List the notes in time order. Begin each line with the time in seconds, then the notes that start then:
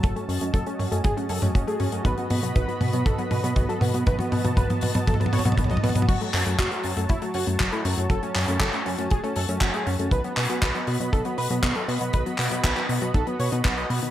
Already playing: F#3 F#4 A5
0.03 F#1 F#3 A4 D#5, kick, closed hi-hat, mid tom
0.16 A3 C#4, closed hi-hat
0.29 F#2 C#4, open hi-hat
0.41 F#2 A3 C#4, closed hi-hat
0.54 F#1 F#3 A4, kick, closed hi-hat
0.66 A3 C#4, closed hi-hat
0.79 F#2 C#4, open hi-hat, mid tom
0.92 F#2 A3 C#4, closed hi-hat
1.04 F#1 F#3 G#4, kick, closed hi-hat, mid tom
1.17 A3 C#4, closed hi-hat
1.29 F#2 C#4 A4, open hi-hat
1.42 F#2 A3 C#4, closed hi-hat, mid tom
1.55 F#1 F#3 C#4, kick, closed hi-hat
1.67 A3 G#4, closed hi-hat
1.80 F#2 C#4, open hi-hat, mid tom
1.92 F#2 A3 C#4, closed hi-hat
2.05 B1 D#3 B3 B4 B5, kick, closed hi-hat, mid tom
2.18 F#3 B3, closed hi-hat
2.30 B2 B3, open hi-hat, mid tom
2.43 B2 F#3 B3, closed hi-hat
2.55 B1 D#3 B4, kick, closed hi-hat, mid tom
2.68 F#3 B3, closed hi-hat
2.81 B2 B3, open hi-hat, mid tom
2.93 B2 F#3 B3, closed hi-hat
3.06 B1 D#3 A4, kick, closed hi-hat, mid tom
3.18 F#3 B3, closed hi-hat
3.31 B2 B3 B4, open hi-hat, mid tom
3.44 B2 F#3 B3, closed hi-hat
3.56 B1 D#3 B3, kick, closed hi-hat, mid tom
3.69 F#3 A4, closed hi-hat
3.81 B2 B3, open hi-hat, mid tom
3.94 B2 F#3 B3, closed hi-hat
4.07 B1 D#3 B4 A5, kick, closed hi-hat, mid tom
4.19 F#3 B3, closed hi-hat, mid tom
4.32 B2 B3, open hi-hat, mid tom
4.45 B2 F#3 B3, closed hi-hat, mid tom
4.57 B1 D#3 B4, kick, closed hi-hat, mid tom
4.70 F#3 B3, closed hi-hat, mid tom
4.81 B2 B3, open hi-hat, mid tom
4.94 B2 F#3 B3, closed hi-hat, mid tom
5.07 B1 D#3 A4, kick, closed hi-hat, mid tom
5.14 mid tom
5.20 F#3 B3, closed hi-hat, mid tom
5.26 mid tom
5.33 B2 B3 C#5, open hi-hat, mid tom
5.39 mid tom
5.45 B2 F#3 B3, closed hi-hat, mid tom
5.52 mid tom
5.58 B1 D#3 B3, kick, closed hi-hat, mid tom
5.64 mid tom
5.70 F#3 D#5, closed hi-hat, mid tom
5.77 mid tom
5.83 B2 B3, open hi-hat, mid tom
5.89 mid tom
5.96 B2 F#3 B3, closed hi-hat, mid tom
6.02 mid tom
6.08 F#1 F#3 F#4 C#5 A5, kick, closed hi-hat, crash
6.21 F#3 A3, closed hi-hat
6.34 F#2 F#3 C#4, clap, open hi-hat
6.46 F#2 F#3 A3, closed hi-hat
6.59 F#1 F#3 F#4, kick, clap, closed hi-hat
6.71 F#3 A3, closed hi-hat
6.83 F#2 F#3 C#4, open hi-hat
6.97 F#2 F#3 A3, closed hi-hat
7.09 F#1 F#3 E4, kick, closed hi-hat
7.22 F#3 A3, closed hi-hat
7.34 F#2 C#4 F#4, open hi-hat
7.47 F#2 F#3 A3, closed hi-hat
7.60 F#1 F#3, kick, clap, closed hi-hat
7.72 A3 E4, closed hi-hat
7.85 F#2 F#3 C#4, open hi-hat
7.97 F#2 F#3 A3, closed hi-hat
8.10 F#1 F#3 A4, kick, closed hi-hat
8.23 A3 C#4, closed hi-hat
8.35 F#2 C#4, clap, open hi-hat
8.48 F#2 A3 C#4, closed hi-hat
8.60 F#1 F#3 A4, kick, clap, closed hi-hat
8.73 A3 C#4, clap, closed hi-hat
8.86 F#2 C#4, open hi-hat
8.98 F#2 A3 C#4, closed hi-hat
9.10 F#1 F#3 G#4, kick, closed hi-hat
9.24 A3 C#4, closed hi-hat
9.36 F#2 C#4 A4, open hi-hat
9.49 F#2 A3 C#4, closed hi-hat
9.61 F#1 F#3 C#4, kick, clap, closed hi-hat
9.74 A3 G#4, closed hi-hat
9.87 F#2 C#4, open hi-hat
9.99 F#2 A3 C#4, closed hi-hat
10.11 B1 D#3 B3 B4 D#5 B5, kick, closed hi-hat
10.24 F#3 B3, closed hi-hat
10.36 B2 B3, clap, open hi-hat
10.50 B2 F#3 B3, closed hi-hat
10.62 B1 D#3 B4, kick, clap, closed hi-hat
10.75 F#3 B3, closed hi-hat
10.87 B2 B3, open hi-hat
11.00 B2 F#3 B3, closed hi-hat
11.12 B1 D#3 A4, kick, closed hi-hat
11.25 F#3 B3, closed hi-hat
11.38 B2 B3 B4, open hi-hat
11.50 B2 F#3 B3, closed hi-hat
11.63 B1 D#3 B3, kick, clap, closed hi-hat
11.75 F#3 A4, closed hi-hat
11.88 B2 B3, open hi-hat
12.01 B2 F#3 B3, closed hi-hat
12.13 B1 D#3 B4, kick, closed hi-hat
12.26 F#3 B3, closed hi-hat
12.38 B2 B3, clap, open hi-hat
12.51 B2 F#3 B3, closed hi-hat
12.64 B1 D#3 B4, kick, clap, closed hi-hat
12.76 F#3 B3, clap, closed hi-hat
12.89 B2 B3, open hi-hat
13.02 B2 F#3 B3, closed hi-hat
13.14 B1 D#3 A4, kick, closed hi-hat
13.27 F#3 B3, closed hi-hat
13.39 B2 B3 C#5, open hi-hat
13.52 B2 B3 D#4, closed hi-hat
13.64 B1 B3, kick, clap, closed hi-hat
13.77 B4 D#5, closed hi-hat
13.90 B2 B3 F#4, open hi-hat
14.02 B2 D#3 B3, closed hi-hat